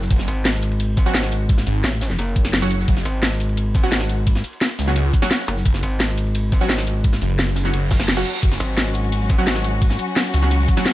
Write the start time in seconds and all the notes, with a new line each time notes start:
0.02 snare
0.11 F#1, kick, closed hi-hat, ride
0.19 snare
0.28 G#1, closed hi-hat, ride, shaker
0.45 snare, closed hi-hat, ride
0.54 snare, shaker
0.63 closed hi-hat, ride, shaker
0.71 ride
0.80 closed hi-hat, ride
0.97 kick, closed hi-hat, ride, shaker
1.06 F#3 C#4 F#4
1.14 snare, closed hi-hat, ride
1.23 snare
1.32 closed hi-hat, ride, shaker
1.49 kick, closed hi-hat, ride
1.58 snare, shaker
1.67 G#1, closed hi-hat, ride, shaker
1.75 ride
1.84 A1, snare, closed hi-hat, ride
1.93 shaker
2.01 snare, open hi-hat, ride, shaker
2.10 snare
2.19 F#1, snare, closed hi-hat, ride
2.27 shaker
2.36 kick, closed hi-hat, ride, shaker
2.45 snare, ride
2.53 snare, closed hi-hat, ride
2.62 F#3 C#4 F#4, snare, shaker
2.71 closed hi-hat, ride, shaker
2.80 snare
2.88 F#1, kick, closed hi-hat, ride
2.97 snare
3.05 G#1, closed hi-hat, ride, shaker
3.23 snare, closed hi-hat, ride
3.31 snare, shaker
3.40 closed hi-hat, ride, shaker
3.49 ride
3.57 closed hi-hat, ride
3.75 kick, closed hi-hat, ride, shaker
3.83 F#3 C#4 F#4
3.91 snare, closed hi-hat, ride
4.01 snare
4.09 closed hi-hat, ride, shaker
4.27 kick, closed hi-hat, ride
4.35 snare
4.44 closed hi-hat, ride, shaker
4.53 ride
4.61 snare, closed hi-hat, ride
4.70 shaker
4.79 C#2, snare, open hi-hat, ride, shaker
4.87 F#3 C#4 F#4, snare
4.96 snare, closed hi-hat, ride
5.13 kick, closed hi-hat, ride, shaker
5.22 F#3 C#4 F#4, snare, ride
5.30 snare, closed hi-hat, ride
5.40 snare
5.48 F#1, closed hi-hat, ride, shaker
5.57 snare
5.65 F#1, kick, closed hi-hat, ride
5.74 snare
5.83 G#1, closed hi-hat, ride, shaker
6.00 snare, closed hi-hat, ride
6.09 snare, shaker
6.17 closed hi-hat, ride, shaker
6.26 ride
6.35 closed hi-hat, ride
6.52 kick, closed hi-hat, ride, shaker
6.61 F#3 C#4 F#4
6.69 snare, closed hi-hat, ride
6.78 snare
6.87 closed hi-hat, ride, shaker
7.04 kick, closed hi-hat, ride
7.13 snare, shaker
7.22 F#1, closed hi-hat, ride, shaker
7.30 ride
7.39 snare, closed hi-hat, ride
7.48 shaker
7.56 snare, open hi-hat, ride, shaker
7.65 F#3 C#4 F#4, snare
7.74 F#1, snare, closed hi-hat, ride, reverse cymbal
7.91 kick, snare, closed hi-hat, ride, shaker
7.99 snare, ride
8.08 snare, closed hi-hat, ride
8.17 F#3 C#4 F#4, snare, ride, shaker
8.25 closed hi-hat, ride, shaker
8.35 snare
8.43 F#1 F#3 C#4 F#4, kick, closed hi-hat, crash, ride, ride bell
8.52 snare
8.60 G#1, closed hi-hat, ride, ride bell, shaker
8.77 snare, closed hi-hat, ride, ride bell
8.86 snare, shaker
8.94 closed hi-hat, ride, ride bell, shaker
9.04 ride
9.12 closed hi-hat, ride, ride bell
9.30 kick, closed hi-hat, ride, ride bell, shaker
9.38 F#3 C#4 F#4
9.47 snare, closed hi-hat, ride, ride bell
9.56 snare
9.64 closed hi-hat, ride, ride bell, shaker
9.82 kick, closed hi-hat, ride, ride bell
9.90 snare
9.99 closed hi-hat, ride, ride bell, shaker
10.08 ride
10.16 snare, closed hi-hat, ride, ride bell
10.25 shaker
10.34 C#2, snare, open hi-hat, ride, ride bell, shaker
10.42 F#3 C#4 F#4, snare
10.51 snare, closed hi-hat, ride, ride bell
10.68 kick, closed hi-hat, ride, ride bell, shaker
10.76 F#3 C#4 F#4, snare, ride
10.86 snare, closed hi-hat, ride, ride bell